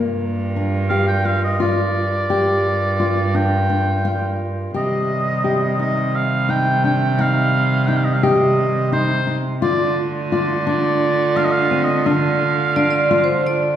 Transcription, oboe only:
0.89 1.06 F5 loud
1.08 1.27 G5 loud
1.25 1.43 F5 medium
1.44 1.60 D#5 medium
1.61 3.37 D5 loud
3.36 4.40 G5 medium
4.76 5.76 D#5 loud
5.81 6.17 D#5 loud
6.16 6.51 F5 loud
6.50 6.84 G5 loud
6.85 7.22 G5 medium
7.21 7.88 F5 loud
7.87 7.98 G5 medium
7.96 8.06 F5 medium
8.05 8.15 D#5 medium
8.13 8.25 F5 medium
8.24 8.92 D#5 medium
8.93 9.41 C5 loud
9.62 10.02 D5 loud
10.32 10.64 D5 medium
10.68 11.38 D5 loud
11.37 11.46 F5 loud
11.45 11.54 D#5 loud
11.52 11.86 F5 loud
11.84 12.08 D#5 medium
12.07 13.76 F5 loud

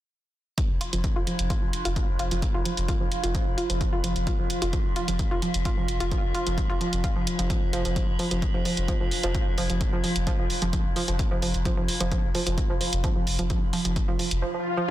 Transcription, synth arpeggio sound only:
0.58 0.69 F3 medium
0.81 0.85 F4 loud
0.93 1.03 F3 medium
1.16 1.20 F4 loud
1.27 1.38 F3 medium
1.50 1.55 F4 loud
1.62 1.73 F3 medium
1.85 1.89 F4 loud
1.96 2.08 F3 medium
2.19 2.24 F4 loud
2.31 2.42 F3 medium
2.54 2.59 F4 loud
2.66 2.77 F3 medium
2.89 2.93 F4 loud
3.00 3.11 F3 medium
3.24 3.28 F4 loud
3.35 3.46 F3 medium
3.58 3.62 F4 loud
3.70 3.80 F3 medium
3.93 3.97 F4 loud
4.04 4.15 F3 medium
4.27 4.32 F4 loud
4.39 4.50 F3 medium
4.62 4.66 F4 loud
4.73 4.85 F3 medium
4.96 5.01 F4 loud
5.08 5.19 F3 medium
5.31 5.36 F4 loud
5.42 5.54 F3 medium
5.65 5.70 F4 loud
5.77 5.88 F3 medium
6.00 6.05 F4 loud
6.12 6.23 F3 medium
6.35 6.39 F4 loud
6.47 6.57 F3 medium
6.70 6.74 F4 loud
6.81 6.92 F3 medium
7.04 7.08 F4 loud
7.16 7.26 F3 medium
7.39 7.46 F3 medium
7.50 7.55 F3 medium
7.73 7.81 F3 loud
7.85 7.89 F3 medium
7.96 8.08 F3 medium
8.19 8.24 F3 loud
8.31 8.42 F3 medium
8.54 8.59 F3 loud
8.65 8.77 F3 medium
8.89 8.93 F3 medium
9.01 9.11 F3 medium
9.24 9.28 F3 loud
9.35 9.46 F3 medium
9.58 9.62 F3 loud
9.70 9.80 F3 medium
9.93 9.97 F3 loud
10.04 10.15 F3 medium
10.27 10.32 F3 loud
10.39 10.50 F3 medium
10.62 10.66 F3 loud
10.73 10.85 F3 medium
10.96 11.01 F3 loud
11.08 11.19 F3 medium
11.31 11.35 F3 loud
11.42 11.54 F3 medium
11.65 11.70 F3 loud
11.77 11.88 F3 medium
12.00 12.05 F3 loud
12.12 12.23 F3 medium
12.35 12.39 F3 loud
12.47 12.57 F3 medium
12.70 12.74 F3 loud
12.81 12.92 F3 medium
13.04 13.09 F3 loud
13.16 13.26 F3 medium
13.39 13.43 F3 loud
13.50 13.61 F3 medium
13.73 13.78 F3 loud
13.85 13.96 F3 medium
14.08 14.12 F3 loud
14.19 14.31 F3 medium
14.42 14.47 F3 loud
14.54 14.65 F3 medium
14.77 14.82 F3 loud

